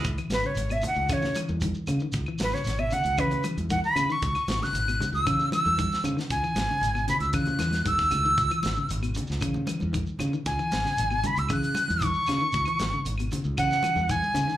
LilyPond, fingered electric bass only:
\new Staff \with { instrumentName = "Fingered electric bass" } { \clef bass \time 4/4 \key cis \minor \tempo 4 = 115 cis,16 r16 gis,,16 r16 gis,,8 r16 cis,16 cis8 r16 e,8 r16 cis16 r16 | cis,16 r16 gis,,16 r16 gis,,8 r16 cis,16 cis8 r16 e,8 r16 cis16 r16 | cis,16 r16 gis,,16 r16 gis,,8 r16 cis,16 cis8 r16 e,8 r16 cis16 r16 | cis,16 r16 gis,,16 r16 gis,,8 r16 cis,16 cis8 e,8 dis,8 cis,8 |
cis,16 r16 gis,,16 r16 gis,,8 r16 cis,16 cis8 r16 e,8 r16 cis16 r16 | cis,16 r16 gis,,16 r16 gis,,8 r16 cis,16 cis8 r16 e,8 r16 cis16 r16 | cis,16 r16 gis,,16 r16 gis,,8 r16 cis,16 cis8 r16 e,8 r16 cis16 r16 | }